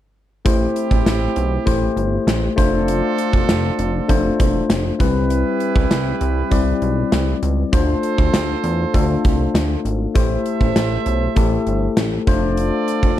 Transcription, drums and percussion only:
0.46 kick loud
0.46 closed hi-hat medium
0.76 closed hi-hat medium
0.91 kick medium
1.06 snare medium
1.06 closed hi-hat medium
1.36 closed hi-hat medium
1.67 kick medium
1.67 closed hi-hat medium
1.97 closed hi-hat medium
2.28 snare medium
2.28 closed hi-hat medium
2.58 kick medium
2.58 closed hi-hat medium
2.88 closed hi-hat medium
3.18 closed hi-hat medium
3.33 kick medium
3.49 snare medium
3.49 closed hi-hat medium
3.79 closed hi-hat medium
4.09 kick medium
4.09 closed hi-hat medium
4.40 kick medium
4.40 closed hi-hat medium
4.70 snare medium
4.70 closed hi-hat medium
5.00 kick medium
5.00 closed hi-hat medium
5.30 closed hi-hat medium
5.60 closed hi-hat medium
5.76 kick medium
5.91 snare medium
5.91 closed hi-hat medium
6.21 closed hi-hat medium
6.51 kick medium
6.51 closed hi-hat medium
6.82 closed hi-hat medium
7.12 snare medium
7.12 closed hi-hat medium
7.43 closed hi-hat medium
7.73 kick loud
7.73 closed hi-hat medium
8.03 closed hi-hat medium
8.18 kick medium
8.34 snare medium
8.34 closed hi-hat medium
8.64 closed hi-hat medium
8.94 kick medium
8.94 closed hi-hat medium
9.25 kick medium
9.25 closed hi-hat medium
9.55 snare loud
9.55 closed hi-hat medium
9.85 closed hi-hat medium
10.15 kick loud
10.15 closed hi-hat medium
10.46 closed hi-hat medium
10.61 kick medium
10.76 snare medium
10.76 closed hi-hat medium
11.06 closed hi-hat medium
11.36 kick medium
11.36 closed hi-hat medium
11.67 closed hi-hat medium
11.97 snare loud
11.97 closed hi-hat medium
12.27 kick medium
12.27 closed hi-hat medium
12.57 closed hi-hat medium
12.88 closed hi-hat medium
13.03 kick medium

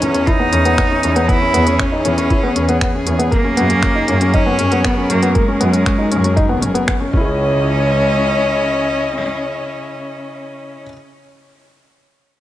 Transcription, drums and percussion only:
0.02 closed hi-hat medium
0.14 closed hi-hat soft
0.27 kick loud
0.27 closed hi-hat soft
0.53 closed hi-hat medium
0.65 closed hi-hat soft
0.78 finger snap medium
0.78 kick loud
0.78 closed hi-hat soft
1.03 closed hi-hat medium
1.16 closed hi-hat soft
1.29 kick loud
1.29 closed hi-hat soft
1.54 closed hi-hat medium
1.67 closed hi-hat soft
1.79 finger snap loud
1.79 kick loud
1.79 closed hi-hat soft
2.05 closed hi-hat medium
2.18 closed hi-hat soft
2.30 kick loud
2.30 closed hi-hat soft
2.56 closed hi-hat medium
2.69 closed hi-hat soft
2.81 finger snap medium
2.81 kick loud
2.81 closed hi-hat soft
3.07 closed hi-hat medium
3.20 closed hi-hat soft
3.32 kick loud
3.32 closed hi-hat soft
3.57 closed hi-hat medium
3.70 closed hi-hat soft
3.83 finger snap medium
3.83 kick loud
3.83 closed hi-hat soft
4.08 closed hi-hat medium
4.21 closed hi-hat soft
4.34 kick loud
4.34 closed hi-hat soft
4.59 closed hi-hat medium
4.72 closed hi-hat soft
4.85 finger snap medium
4.85 kick loud
4.85 closed hi-hat soft
5.10 closed hi-hat medium
5.23 closed hi-hat soft
5.35 kick loud
5.35 closed hi-hat soft
5.61 closed hi-hat medium
5.73 closed hi-hat soft
5.86 finger snap medium
5.86 kick loud
5.86 closed hi-hat soft
6.12 closed hi-hat medium
6.24 closed hi-hat soft
6.37 kick loud
6.37 closed hi-hat soft
6.62 closed hi-hat medium
6.75 closed hi-hat soft
6.88 finger snap medium
6.88 kick loud
6.88 closed hi-hat soft
7.13 kick loud

